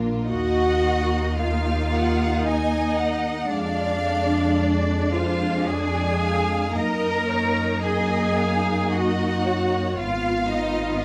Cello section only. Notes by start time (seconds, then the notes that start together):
Already playing: A#2
0.29 F#4
1.41 F4
2.46 D#4
3.53 D4
5.13 F4
5.66 G#4
6.76 A#4
7.84 G#4
8.92 F#4
9.99 F4
10.51 D#4
11.01 F4